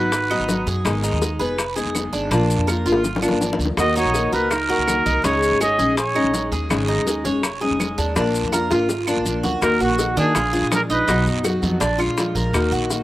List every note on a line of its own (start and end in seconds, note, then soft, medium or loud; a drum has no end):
0.00 0.37 G#1 medium
0.00 0.12 F#3 medium
0.00 0.12 B3 medium
0.00 0.12 D#4 medium
0.00 0.12 F#4 medium
0.00 0.30 F#4 medium
0.00 0.67 B4 medium
0.12 muted nylon-string guitar stroke medium
0.12 high bongo medium
0.12 long guiro medium
0.12 maracas medium
0.30 0.47 F#3 medium
0.30 0.48 B3 medium
0.30 0.66 D#4 medium
0.30 0.48 D#4 medium
0.30 0.48 F#4 medium
0.30 high bongo soft
0.30 claves medium
0.40 0.66 G#1 medium
0.48 0.84 F#3 medium
0.48 0.84 B3 medium
0.48 0.85 D#4 soft
0.48 0.86 F#4 medium
0.48 high bongo soft
0.48 low bongo medium
0.48 short guiro medium
0.48 maracas medium
0.67 0.84 F#2 medium
0.67 1.03 G#4 medium
0.67 high bongo soft
0.67 short guiro medium
0.67 maracas soft
0.84 1.11 G#1 loud
0.84 1.21 D#3 medium
0.84 1.20 G#3 medium
0.84 1.21 B3 medium
0.84 1.21 D#4 medium
0.84 1.22 G#4 medium
0.84 high bongo medium
0.84 long guiro medium
0.84 claves medium
0.84 maracas medium
1.04 1.39 D#4 medium
1.04 maracas medium
1.13 1.39 D#2 medium
1.21 1.39 G#3 soft
1.21 1.39 B3 medium
1.21 1.39 D#4 medium
1.21 1.38 G#4 medium
1.21 high bongo medium
1.21 short guiro medium
1.21 maracas medium
1.39 1.83 F1 medium
1.39 1.57 G#3 soft
1.39 1.57 B3 soft
1.39 1.58 D#4 medium
1.39 1.57 G#4 medium
1.39 1.75 B4 medium
1.39 high bongo soft
1.39 short guiro medium
1.39 maracas soft
1.58 muted nylon-string guitar stroke medium
1.58 high bongo medium
1.58 long guiro medium
1.58 claves medium
1.58 maracas medium
1.76 1.93 G#3 soft
1.76 1.94 B3 soft
1.76 1.95 D#4 medium
1.76 2.12 G#4 medium
1.76 1.94 G#4 medium
1.76 high bongo soft
1.76 maracas medium
1.85 2.12 F1 medium
1.94 2.30 G#3 medium
1.94 2.31 B3 medium
1.94 2.31 D#4 medium
1.94 2.32 G#4 medium
1.94 high bongo soft
1.94 low bongo medium
1.94 short guiro medium
1.94 claves medium
1.94 maracas medium
2.13 2.30 G#1 medium
2.13 2.30 D4 medium
2.13 high bongo soft
2.13 short guiro medium
2.13 maracas soft
2.31 2.57 A#1 loud
2.31 2.66 F3 medium
2.31 2.67 A#3 medium
2.31 2.67 D4 medium
2.31 2.68 D4 medium
2.31 2.68 F4 medium
2.31 high bongo medium
2.31 long guiro medium
2.31 maracas medium
2.50 maracas medium
2.58 2.85 F2 medium
2.67 2.85 F3 soft
2.67 2.86 A#3 medium
2.67 2.86 D4 medium
2.67 2.84 F4 medium
2.67 2.85 A#4 medium
2.67 high bongo medium
2.67 short guiro medium
2.67 claves medium
2.67 maracas medium
2.86 3.29 G#1 medium
2.86 3.04 A#3 medium
2.86 3.04 D4 medium
2.86 3.04 F4 medium
2.86 3.22 F4 medium
2.86 short guiro medium
2.86 maracas soft
2.92 high bongo medium
3.04 muted nylon-string guitar stroke medium
3.04 low bongo medium
3.04 long guiro medium
3.04 maracas medium
3.16 low bongo loud
3.22 3.41 A#3 medium
3.22 3.58 D4 medium
3.22 3.41 D4 medium
3.22 3.40 F4 medium
3.22 claves medium
3.22 maracas medium
3.28 3.58 G#1 medium
3.28 low bongo medium
3.41 3.77 F3 soft
3.41 3.77 A#3 medium
3.41 3.78 D4 medium
3.41 3.78 F4 medium
3.41 low bongo medium
3.41 short guiro medium
3.41 maracas medium
3.53 low bongo medium
3.59 3.77 D2 medium
3.59 short guiro medium
3.59 maracas soft
3.65 low bongo medium
3.77 4.04 D#2 loud
3.77 4.13 D#3 medium
3.77 4.14 A#3 medium
3.77 4.14 D#4 medium
3.77 4.15 F#4 medium
3.77 3.96 D#5 loud
3.77 high bongo medium
3.77 long guiro medium
3.77 claves medium
3.77 maracas medium
3.96 4.31 D#4 medium
3.96 4.31 F#4 medium
3.96 4.31 C#5 medium
3.96 maracas medium
4.05 4.31 A#1 medium
4.14 4.32 D#3 soft
4.14 4.32 A#3 medium
4.14 4.33 D#4 medium
4.14 4.31 F#4 medium
4.14 high bongo medium
4.14 short guiro medium
4.14 maracas medium
4.32 4.76 C#2 medium
4.32 4.50 A#3 medium
4.32 4.50 D#4 medium
4.32 4.50 F#4 medium
4.32 4.68 A#4 medium
4.32 4.53 B4 medium
4.32 high bongo soft
4.32 short guiro medium
4.32 maracas soft
4.51 5.24 D#4 medium
4.51 5.26 A#4 loud
4.51 muted nylon-string guitar stroke medium
4.51 high bongo medium
4.51 long guiro medium
4.51 claves medium
4.51 maracas medium
4.69 4.86 A#3 soft
4.69 4.87 D#4 medium
4.69 4.87 F#4 medium
4.69 5.05 F#4 medium
4.69 high bongo soft
4.79 5.04 C#2 medium
4.86 5.23 D#3 medium
4.86 5.23 A#3 medium
4.86 5.23 D#4 medium
4.86 5.24 F#4 medium
4.86 high bongo soft
4.86 low bongo medium
4.86 short guiro medium
4.86 claves medium
4.86 maracas medium
5.06 5.23 C2 medium
5.06 5.23 D#4 medium
5.06 high bongo soft
5.06 short guiro medium
5.06 maracas soft
5.23 5.50 C#2 loud
5.23 5.59 C#3 medium
5.23 5.60 G#3 medium
5.23 5.60 C#4 medium
5.23 5.60 D#4 medium
5.23 5.60 G#4 medium
5.23 5.61 C#5 loud
5.23 high bongo medium
5.23 long guiro medium
5.23 maracas medium
5.43 maracas medium
5.51 5.77 G#1 medium
5.61 5.78 G#3 medium
5.61 5.78 C#4 medium
5.61 5.78 D#4 medium
5.61 5.77 G#4 medium
5.61 5.78 C#5 medium
5.61 5.95 D#5 loud
5.61 high bongo medium
5.61 short guiro medium
5.61 claves medium
5.61 maracas medium
5.79 6.22 A#1 medium
5.79 5.97 G#3 medium
5.79 5.97 C#4 medium
5.79 5.97 D#4 medium
5.79 5.96 G#4 medium
5.79 6.14 G#4 medium
5.79 high bongo soft
5.79 short guiro medium
5.79 maracas soft
5.97 6.48 G#4 medium
5.97 6.49 C#5 medium
5.97 muted nylon-string guitar stroke medium
5.97 high bongo medium
5.97 long guiro medium
5.97 maracas medium
6.15 6.32 G#3 medium
6.15 6.33 C#4 medium
6.15 6.51 D#4 medium
6.15 6.33 D#4 medium
6.15 6.33 G#4 medium
6.15 high bongo soft
6.15 claves medium
6.24 6.50 A#1 medium
6.33 6.69 G#3 medium
6.33 6.69 C#4 medium
6.33 6.70 D#4 medium
6.33 6.70 G#4 medium
6.33 high bongo soft
6.33 low bongo medium
6.33 short guiro medium
6.33 maracas medium
6.52 6.69 D#2 medium
6.52 6.87 G#4 medium
6.52 high bongo soft
6.52 short guiro medium
6.52 maracas soft
6.69 6.96 G#1 loud
6.69 7.05 C#3 medium
6.69 7.05 G#3 medium
6.69 7.06 C#4 medium
6.69 7.06 D#4 medium
6.69 7.07 G#4 medium
6.69 high bongo medium
6.69 long guiro medium
6.69 claves medium
6.69 maracas medium
6.88 7.24 D#4 medium
6.98 7.24 D#2 medium
7.06 7.24 G#3 soft
7.06 7.24 C#4 medium
7.06 7.24 D#4 soft
7.06 7.23 G#4 medium
7.06 high bongo medium
7.06 short guiro medium
7.06 maracas medium
7.24 7.69 F1 medium
7.24 7.42 G#3 medium
7.24 7.42 C#4 medium
7.24 7.43 D#4 medium
7.24 7.42 G#4 medium
7.24 7.60 C#5 medium
7.24 high bongo soft
7.24 short guiro medium
7.24 maracas soft
7.43 muted nylon-string guitar stroke medium
7.43 high bongo medium
7.43 long guiro medium
7.43 claves medium
7.43 maracas medium
7.61 7.78 G#3 medium
7.61 7.78 C#4 medium
7.61 7.79 D#4 medium
7.61 7.79 G#4 medium
7.61 7.97 G#4 medium
7.61 high bongo soft
7.71 7.97 F1 medium
7.79 8.15 G#3 medium
7.79 8.15 C#4 medium
7.79 8.16 D#4 medium
7.79 8.16 G#4 medium
7.79 high bongo soft
7.79 low bongo medium
7.79 short guiro medium
7.79 claves medium
7.79 maracas medium
7.98 8.15 D#2 medium
7.98 8.15 D4 medium
7.98 high bongo soft
7.98 short guiro medium
7.98 maracas soft
8.15 8.42 A#1 loud
8.15 8.51 F3 medium
8.15 8.52 A#3 medium
8.15 8.52 D4 medium
8.15 8.53 F4 medium
8.15 high bongo medium
8.15 long guiro medium
8.15 maracas medium
8.35 maracas medium
8.44 8.70 F2 medium
8.52 8.70 F3 medium
8.52 8.70 A#3 medium
8.52 8.70 D4 soft
8.52 8.69 F4 medium
8.52 8.71 A#4 medium
8.52 high bongo medium
8.52 short guiro medium
8.52 claves medium
8.52 maracas medium
8.70 9.15 G#1 medium
8.70 8.88 A#3 medium
8.70 8.89 D4 medium
8.70 8.88 F4 medium
8.70 9.07 F4 medium
8.70 high bongo medium
8.70 short guiro medium
8.70 maracas soft
8.89 muted nylon-string guitar stroke medium
8.89 high bongo medium
8.89 long guiro medium
8.89 maracas medium
9.07 9.25 A#3 medium
9.07 9.43 D4 medium
9.07 9.25 D4 medium
9.07 9.25 F4 medium
9.07 claves medium
9.07 maracas medium
9.17 9.25 G#1 medium
9.25 9.42 A#1 medium
9.25 9.60 F3 soft
9.25 9.61 A#3 medium
9.25 9.62 D4 medium
9.25 9.62 F4 medium
9.25 short guiro medium
9.25 maracas medium
9.43 9.61 D2 medium
9.43 9.61 F#4 medium
9.43 low bongo medium
9.43 short guiro medium
9.43 maracas soft
9.61 9.79 D#2 loud
9.61 9.97 D#3 medium
9.61 9.98 A#3 medium
9.61 9.98 D#4 medium
9.61 9.99 F#4 medium
9.61 9.80 A#4 loud
9.61 high bongo medium
9.61 long guiro medium
9.61 claves medium
9.61 maracas medium
9.80 10.15 A#1 medium
9.80 10.15 A#3 medium
9.80 10.16 F#4 medium
9.80 10.15 F#4 medium
9.80 maracas soft
9.98 10.16 D#3 medium
9.98 10.16 A#3 medium
9.98 10.16 D#4 medium
9.98 10.15 F#4 medium
9.98 high bongo medium
9.98 short guiro medium
9.98 maracas medium
10.16 10.34 D#3 loud
10.16 10.35 A#3 soft
10.16 10.35 D4 medium
10.16 10.68 D4 medium
10.16 10.35 D#4 medium
10.16 10.34 F#4 medium
10.16 10.69 G#4 medium
10.16 short guiro medium
10.16 maracas soft
10.35 10.61 A#1 medium
10.35 10.53 F4 medium
10.35 muted nylon-string guitar stroke medium
10.35 high bongo medium
10.35 long guiro medium
10.35 claves medium
10.35 maracas medium
10.53 10.71 G#3 medium
10.53 10.71 D4 medium
10.53 10.71 F4 medium
10.53 10.89 G#4 medium
10.53 maracas soft
10.62 10.89 A#2 medium
10.71 11.07 F3 medium
10.71 11.08 G#3 medium
10.71 11.08 D4 medium
10.71 11.08 F4 medium
10.71 10.82 A#4 medium
10.71 high bongo medium
10.71 low bongo medium
10.71 short guiro medium
10.71 claves medium
10.71 maracas medium
10.90 11.07 A#1 medium
10.90 11.24 D#4 medium
10.90 11.25 B4 medium
10.90 11.08 D#5 medium
10.90 short guiro medium
10.90 maracas soft
11.07 11.26 B1 loud
11.07 11.44 B2 medium
11.07 11.43 F#3 medium
11.07 11.44 B3 medium
11.07 11.43 D#4 medium
11.07 11.44 D#4 medium
11.07 11.45 F#4 medium
11.07 high bongo medium
11.07 long guiro medium
11.07 maracas medium
11.26 11.61 F#2 medium
11.26 high bongo soft
11.26 maracas soft
11.44 11.62 F#3 medium
11.44 11.62 B3 medium
11.44 11.62 D#4 medium
11.44 11.80 F#4 medium
11.44 11.61 F#4 medium
11.44 high bongo medium
11.44 short guiro medium
11.44 claves medium
11.44 maracas medium
11.62 11.80 F2 loud
11.62 11.80 F#3 medium
11.62 11.80 B3 medium
11.62 11.80 D#4 medium
11.62 11.80 F#4 medium
11.62 high bongo soft
11.62 short guiro medium
11.62 maracas soft
11.80 12.07 A#1 loud
11.80 11.98 D4 medium
11.80 muted nylon-string guitar stroke medium
11.80 high bongo medium
11.80 long guiro medium
11.80 maracas medium
11.98 12.16 G#3 medium
11.98 12.17 D4 medium
11.98 12.16 F4 medium
11.98 12.34 F4 medium
11.98 claves medium
11.98 maracas soft
12.07 12.34 A#2 medium
12.16 12.53 F3 soft
12.16 12.53 G#3 medium
12.16 12.54 D4 medium
12.16 12.54 F4 medium
12.16 high bongo medium
12.16 low bongo medium
12.16 short guiro medium
12.16 maracas medium
12.35 12.53 A#1 medium
12.35 12.71 A#4 medium
12.35 high bongo soft
12.35 short guiro medium
12.35 maracas soft
12.53 12.71 D#2 loud
12.53 12.88 D#3 medium
12.53 12.89 A#3 medium
12.53 12.90 D#4 medium
12.53 12.90 F#4 medium
12.53 high bongo medium
12.53 long guiro medium
12.53 claves medium
12.53 maracas medium
12.72 13.03 A#1 medium
12.72 13.03 F#4 medium
12.72 maracas soft
12.89 13.03 D#3 medium
12.89 13.03 A#3 medium
12.89 13.03 D#4 medium
12.89 13.03 F#4 medium
12.89 high bongo medium
12.89 short guiro medium
12.89 maracas medium